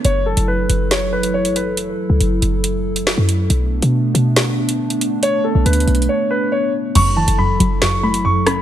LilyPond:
<<
  \new Staff \with { instrumentName = "Grand piano" } { \time 4/4 \key fis \minor \tempo 4 = 139 cis''8 a'8 b'4 cis''8 b'8 cis''8 b'8 | r1 | r1 | cis''8 a'8 b'4 cis''8 b'8 cis''8 r8 |
cis'''8 a''8 b''4 cis'''8 b''8 cis'''8 b''8 | }
  \new Staff \with { instrumentName = "Analog synth pad" } { \time 4/4 \key fis \minor <fis e' a'>1~ | <fis e' a'>1 | <a b d'>1~ | <a b d'>1 |
<fis e' a'>1 | }
  \new Staff \with { instrumentName = "Synth pluck" } { \clef bass \time 4/4 \key fis \minor r1 | r1 | r1 | r1 |
fis,8 e8 fis,8 fis8 fis,8 a8 fis,8 cis'8 | }
  \new Staff \with { instrumentName = "808-style bass" } { \clef bass \time 4/4 \key fis \minor fis,,8. fis,,8. fis,,2~ fis,,8~ | fis,,8 r16 cis,16 fis,,8 fis,,4.~ fis,,16 fis,8. | b,,8. b,8. b,2~ b,8~ | b,8 r16 b,,16 d,8 b,,8 r2 |
fis,,8. fis,,8. fis,,2~ fis,,8 | }
  \new DrumStaff \with { instrumentName = "Drums" } \drummode { \time 4/4 hh8. hh16 r8 hh8 <hh sn>8. hh16 r16 hh16 hh8 | hh4 hh8 hh8 hh8. hh16 sn8 hh8 | hh8. hh16 r8 hh8 <hh sn>8. hh16 r16 hh16 hh8 | hh4 \tuplet 3/2 { hh16 hh16 hh16 hh16 hh16 hh16 } r4 r4 |
<cymc hh>8. hh16 r8 hh8 <hh sn>8. hh16 r8 <hh ss>8 | }
>>